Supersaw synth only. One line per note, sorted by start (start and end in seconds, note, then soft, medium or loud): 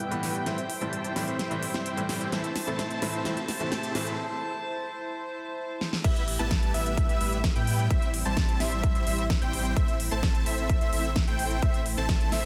0.00 0.16 G3 loud
0.00 0.16 B3 medium
0.00 0.16 E4 medium
0.00 0.16 B4 medium
0.00 0.16 E5 loud
0.23 0.43 G3 medium
0.23 0.43 B3 medium
0.23 0.43 E4 medium
0.23 0.43 B4 medium
0.23 0.43 G5 loud
0.46 0.64 G3 medium
0.46 0.64 C4 medium
0.46 0.64 E4 medium
0.46 0.64 C5 medium
0.46 0.64 E5 medium
0.81 1.13 G3 medium
0.81 1.13 C4 medium
0.81 1.13 E4 medium
0.81 1.13 C5 medium
0.81 1.13 A5 loud
1.16 1.48 G3 medium
1.16 1.48 C4 medium
1.16 1.48 E4 medium
1.16 1.48 C5 medium
1.16 1.48 E5 medium
1.51 1.71 G3 medium
1.51 1.71 C4 medium
1.51 1.71 E4 medium
1.51 1.71 C5 medium
1.51 1.71 E5 medium
1.74 2.02 G3 loud
1.74 2.02 C4 medium
1.74 2.02 E4 medium
1.74 2.02 C5 medium
1.74 2.02 E5 loud
2.09 2.29 G3 medium
2.09 2.29 C4 medium
2.09 2.29 E4 medium
2.09 2.29 C5 medium
2.09 2.29 G5 loud
2.32 2.50 A3 medium
2.32 2.50 C4 medium
2.32 2.50 E4 medium
2.32 2.50 C5 medium
2.32 2.50 E5 medium
2.67 2.99 A3 medium
2.67 2.99 C4 medium
2.67 2.99 E4 medium
2.67 2.99 C5 medium
2.67 2.99 A5 loud
3.02 3.23 A3 medium
3.02 3.23 C4 medium
3.02 3.23 E4 medium
3.02 3.23 C5 medium
3.02 3.23 E5 medium
3.25 3.43 A3 medium
3.25 3.43 C4 medium
3.25 3.43 E4 medium
3.25 3.43 C5 medium
3.25 3.43 E5 medium
3.60 3.92 A3 medium
3.60 3.92 C4 medium
3.60 3.92 E4 medium
3.60 3.92 C5 medium
3.60 3.92 A5 loud
3.95 4.16 A3 medium
3.95 4.16 C4 medium
3.95 4.16 E4 medium
3.95 4.16 C5 medium
3.95 4.16 E5 medium
6.04 6.22 G3 medium
6.04 6.22 B3 medium
6.04 6.22 E4 medium
6.04 6.22 B4 medium
6.04 6.22 E5 medium
6.39 6.71 G3 medium
6.39 6.71 B3 medium
6.39 6.71 E4 medium
6.39 6.71 B4 medium
6.39 6.71 A5 loud
6.74 7.06 G3 medium
6.74 7.06 B3 medium
6.74 7.06 E4 medium
6.74 7.06 B4 medium
6.74 7.06 E5 medium
7.09 7.18 G3 medium
7.09 7.18 B3 medium
7.09 7.18 E4 medium
7.09 7.18 B4 medium
7.09 7.18 E5 loud
7.21 7.38 G3 loud
7.21 7.38 B3 medium
7.21 7.38 E4 medium
7.21 7.38 B4 medium
7.21 7.38 E5 loud
7.56 7.88 G3 medium
7.56 7.88 B3 medium
7.56 7.88 E4 medium
7.56 7.88 B4 medium
7.56 7.88 G5 medium
7.90 8.08 G3 medium
7.90 8.08 C4 medium
7.90 8.08 E4 medium
7.90 8.08 C5 medium
7.90 8.08 E5 medium
8.25 8.57 G3 medium
8.25 8.57 C4 medium
8.25 8.57 E4 medium
8.25 8.57 C5 medium
8.25 8.57 A5 loud
8.60 8.92 G3 medium
8.60 8.92 C4 medium
8.60 8.92 E4 medium
8.60 8.92 C5 medium
8.60 8.92 E5 medium
8.95 9.04 G3 medium
8.95 9.04 C4 medium
8.95 9.04 E4 medium
8.95 9.04 C5 medium
8.95 9.04 E5 medium
9.07 9.24 G3 loud
9.07 9.24 C4 medium
9.07 9.24 E4 medium
9.07 9.24 C5 medium
9.07 9.24 E5 loud
9.41 9.74 G3 medium
9.41 9.74 C4 medium
9.41 9.74 E4 medium
9.41 9.74 C5 medium
9.41 9.74 G5 medium
9.76 9.94 A3 medium
9.76 9.94 C4 medium
9.76 9.94 E4 medium
9.76 9.94 C5 medium
9.76 9.94 E5 medium
10.11 10.43 A3 medium
10.11 10.43 C4 medium
10.11 10.43 E4 medium
10.11 10.43 C5 medium
10.11 10.43 A5 loud
10.46 10.78 A3 medium
10.46 10.78 C4 medium
10.46 10.78 E4 medium
10.46 10.78 C5 medium
10.46 10.78 E5 medium
10.81 10.90 A3 medium
10.81 10.90 C4 medium
10.81 10.90 E4 medium
10.81 10.90 C5 medium
10.81 10.90 E5 medium
10.93 11.10 A3 loud
10.93 11.10 C4 medium
10.93 11.10 E4 medium
10.93 11.10 C5 medium
10.93 11.10 E5 loud
11.28 11.60 A3 medium
11.28 11.60 C4 medium
11.28 11.60 E4 medium
11.28 11.60 C5 medium
11.28 11.60 G5 medium
11.62 11.80 A3 medium
11.62 11.80 C4 medium
11.62 11.80 E4 medium
11.62 11.80 C5 medium
11.62 11.80 E5 medium
11.97 12.29 A3 medium
11.97 12.29 C4 medium
11.97 12.29 E4 medium
11.97 12.29 C5 medium
11.97 12.29 A5 loud
12.32 12.45 A3 medium
12.32 12.45 C4 medium
12.32 12.45 E4 medium
12.32 12.45 C5 medium
12.32 12.45 E5 medium